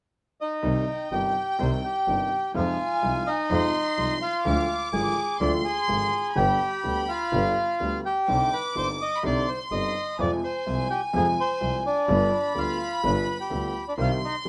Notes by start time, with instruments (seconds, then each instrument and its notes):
0.41 bandoneon D#4 D#5
0.62 grand piano C2 C3 D#3 G3 D#4, double bass C2, violin section G5
1.11 double bass G1, grand piano G1 G2 C3 D#3 G3 D#4, bandoneon G4 G5
1.59 grand piano C2 C3 D#3 G3 D#4, double bass C2, bandoneon C5 C6
1.84 bandoneon G4 G5
2.07 grand piano G1 G2 C3 D#3 G3 D#4, double bass G1
2.54 grand piano F2 C3 F3 G#3 D#4, double bass F2, bandoneon F4 F5, violin section G#5
3.02 grand piano C2 C3 F3 G#3 D#4, double bass C2
3.27 bandoneon D#4 D#5
3.50 grand piano F2 C3 F3 G#3 D#4, double bass F2, violin section C6
3.98 grand piano C2 C3 F3 G#3 D#4, double bass C2
4.22 bandoneon F4 F5
4.45 grand piano D2 D3 F3 G#3 F4, double bass D2, violin section D6
4.93 grand piano G#1 G#2 D3 F3 G#3 F4, double bass G#1, bandoneon G#4 G#5
5.40 double bass D2, grand piano D2 D3 F3 G#3 F4, bandoneon D5 D6, violin section C6
5.64 bandoneon G#4 G#5
5.88 grand piano G#1 G#2 D3 F3 G#3 F4, double bass G#1
6.35 grand piano G1 G2 D3 G3 B3 G4, double bass G1, bandoneon G4 G5, violin section B5
6.84 grand piano D2 D3 G3 B3 G4, double bass D2
7.09 bandoneon F4 F5
7.32 grand piano G1 G2 D3 G3 B3 G4, double bass G1
7.80 grand piano D2 D3 G3 B3 G4, double bass D2
8.06 bandoneon G4 G5
8.28 grand piano C2 C3 D3 G3 C4 D#4, double bass C2, violin section D6
8.53 bandoneon B4 B5
8.75 grand piano G1 G2 D3 G3 C4 D#4, double bass G1, bandoneon C5 C6
9.01 bandoneon D#5 D#6
9.17 violin section B5
9.23 grand piano C2 C3 D3 G3 C4 D#4, double bass C2, bandoneon D5 D6, violin section C6
9.48 bandoneon C5 C6
9.71 grand piano G1 G2 D3 G3 C4 D#4, double bass G1, bandoneon D#5 D#6
10.19 grand piano F2 C3 F3 G#3 F4, double bass F2, bandoneon D5 D6, violin section G#5
10.44 bandoneon C5 C6
10.66 grand piano C2 C3 F3 G#3 F4, double bass C2
10.90 bandoneon G4 G5
11.13 grand piano F2 C3 F3 G#3 F4, double bass F2, bandoneon G#4 G#5
11.40 bandoneon C5 C6
11.61 grand piano C2 C3 F3 G#3 F4, double bass C2
11.86 bandoneon D4 D5
12.07 grand piano G1 G2 D3 G3 B3 F4, double bass G1, violin section B5
12.55 grand piano D2 D3 G3 B3 F4, double bass D2, bandoneon F4 F5
13.03 grand piano G1 G2 D3 G3 B3 F4, double bass G1, bandoneon B4 B5
13.41 bandoneon G4 G5
13.50 grand piano D2 D3 G3 B3 F4, double bass D2
13.88 bandoneon D4 D5
13.97 grand piano C2 C3 D#3 G3 C4 G4, double bass C2, bandoneon F5, violin section C6
14.02 bandoneon F4
14.25 bandoneon D#4 D#5
14.45 grand piano G1 G2 D#3 G3 C4 G4